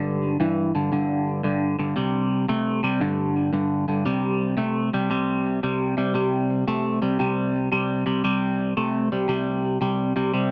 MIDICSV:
0, 0, Header, 1, 2, 480
1, 0, Start_track
1, 0, Tempo, 522876
1, 1802, Time_signature, 4, 2, 24, 8
1, 9651, End_track
2, 0, Start_track
2, 0, Title_t, "Clean electric guitar"
2, 0, Program_c, 0, 27
2, 0, Note_on_c, 0, 43, 84
2, 0, Note_on_c, 0, 50, 88
2, 330, Note_off_c, 0, 43, 0
2, 333, Note_off_c, 0, 50, 0
2, 365, Note_on_c, 0, 43, 82
2, 370, Note_on_c, 0, 52, 100
2, 652, Note_off_c, 0, 43, 0
2, 654, Note_off_c, 0, 52, 0
2, 686, Note_on_c, 0, 43, 77
2, 689, Note_on_c, 0, 50, 82
2, 828, Note_off_c, 0, 43, 0
2, 830, Note_off_c, 0, 50, 0
2, 843, Note_on_c, 0, 43, 71
2, 849, Note_on_c, 0, 50, 86
2, 1291, Note_off_c, 0, 43, 0
2, 1294, Note_off_c, 0, 50, 0
2, 1317, Note_on_c, 0, 43, 73
2, 1325, Note_on_c, 0, 50, 77
2, 1607, Note_off_c, 0, 43, 0
2, 1611, Note_off_c, 0, 50, 0
2, 1640, Note_on_c, 0, 43, 71
2, 1647, Note_on_c, 0, 50, 79
2, 1785, Note_off_c, 0, 43, 0
2, 1789, Note_off_c, 0, 50, 0
2, 1797, Note_on_c, 0, 48, 82
2, 1804, Note_on_c, 0, 55, 94
2, 2248, Note_off_c, 0, 48, 0
2, 2251, Note_off_c, 0, 55, 0
2, 2281, Note_on_c, 0, 48, 79
2, 2287, Note_on_c, 0, 57, 92
2, 2570, Note_off_c, 0, 48, 0
2, 2572, Note_off_c, 0, 57, 0
2, 2598, Note_on_c, 0, 48, 67
2, 2607, Note_on_c, 0, 55, 78
2, 2745, Note_off_c, 0, 48, 0
2, 2749, Note_off_c, 0, 55, 0
2, 2759, Note_on_c, 0, 43, 91
2, 2765, Note_on_c, 0, 50, 93
2, 3209, Note_off_c, 0, 43, 0
2, 3212, Note_off_c, 0, 50, 0
2, 3237, Note_on_c, 0, 43, 83
2, 3243, Note_on_c, 0, 50, 85
2, 3528, Note_off_c, 0, 43, 0
2, 3531, Note_off_c, 0, 50, 0
2, 3561, Note_on_c, 0, 43, 75
2, 3565, Note_on_c, 0, 50, 70
2, 3706, Note_off_c, 0, 43, 0
2, 3708, Note_off_c, 0, 50, 0
2, 3723, Note_on_c, 0, 48, 72
2, 3724, Note_on_c, 0, 55, 90
2, 4171, Note_off_c, 0, 48, 0
2, 4171, Note_off_c, 0, 55, 0
2, 4193, Note_on_c, 0, 48, 70
2, 4200, Note_on_c, 0, 57, 87
2, 4486, Note_off_c, 0, 48, 0
2, 4489, Note_off_c, 0, 57, 0
2, 4530, Note_on_c, 0, 48, 67
2, 4534, Note_on_c, 0, 55, 75
2, 4670, Note_off_c, 0, 48, 0
2, 4672, Note_off_c, 0, 55, 0
2, 4681, Note_on_c, 0, 48, 72
2, 4688, Note_on_c, 0, 55, 83
2, 5130, Note_off_c, 0, 48, 0
2, 5133, Note_off_c, 0, 55, 0
2, 5171, Note_on_c, 0, 48, 71
2, 5173, Note_on_c, 0, 55, 67
2, 5454, Note_off_c, 0, 48, 0
2, 5455, Note_off_c, 0, 55, 0
2, 5482, Note_on_c, 0, 48, 66
2, 5487, Note_on_c, 0, 55, 76
2, 5626, Note_off_c, 0, 48, 0
2, 5629, Note_off_c, 0, 55, 0
2, 5639, Note_on_c, 0, 48, 83
2, 5646, Note_on_c, 0, 55, 89
2, 6089, Note_off_c, 0, 48, 0
2, 6092, Note_off_c, 0, 55, 0
2, 6128, Note_on_c, 0, 48, 80
2, 6131, Note_on_c, 0, 57, 81
2, 6413, Note_off_c, 0, 48, 0
2, 6415, Note_off_c, 0, 57, 0
2, 6442, Note_on_c, 0, 48, 72
2, 6446, Note_on_c, 0, 55, 73
2, 6587, Note_off_c, 0, 48, 0
2, 6589, Note_off_c, 0, 55, 0
2, 6602, Note_on_c, 0, 48, 88
2, 6608, Note_on_c, 0, 55, 84
2, 7051, Note_off_c, 0, 48, 0
2, 7053, Note_off_c, 0, 55, 0
2, 7084, Note_on_c, 0, 48, 74
2, 7089, Note_on_c, 0, 55, 82
2, 7371, Note_off_c, 0, 48, 0
2, 7374, Note_off_c, 0, 55, 0
2, 7398, Note_on_c, 0, 48, 67
2, 7403, Note_on_c, 0, 55, 75
2, 7545, Note_off_c, 0, 48, 0
2, 7547, Note_off_c, 0, 55, 0
2, 7563, Note_on_c, 0, 48, 76
2, 7567, Note_on_c, 0, 55, 88
2, 8011, Note_off_c, 0, 48, 0
2, 8013, Note_off_c, 0, 55, 0
2, 8050, Note_on_c, 0, 48, 73
2, 8053, Note_on_c, 0, 57, 84
2, 8334, Note_off_c, 0, 48, 0
2, 8336, Note_off_c, 0, 57, 0
2, 8373, Note_on_c, 0, 48, 67
2, 8374, Note_on_c, 0, 55, 76
2, 8508, Note_off_c, 0, 48, 0
2, 8513, Note_off_c, 0, 55, 0
2, 8519, Note_on_c, 0, 48, 69
2, 8528, Note_on_c, 0, 55, 86
2, 8969, Note_off_c, 0, 48, 0
2, 8973, Note_off_c, 0, 55, 0
2, 9004, Note_on_c, 0, 48, 65
2, 9012, Note_on_c, 0, 55, 77
2, 9291, Note_off_c, 0, 48, 0
2, 9295, Note_off_c, 0, 55, 0
2, 9325, Note_on_c, 0, 48, 66
2, 9330, Note_on_c, 0, 55, 77
2, 9468, Note_off_c, 0, 48, 0
2, 9470, Note_off_c, 0, 55, 0
2, 9488, Note_on_c, 0, 48, 81
2, 9491, Note_on_c, 0, 55, 80
2, 9651, Note_off_c, 0, 48, 0
2, 9651, Note_off_c, 0, 55, 0
2, 9651, End_track
0, 0, End_of_file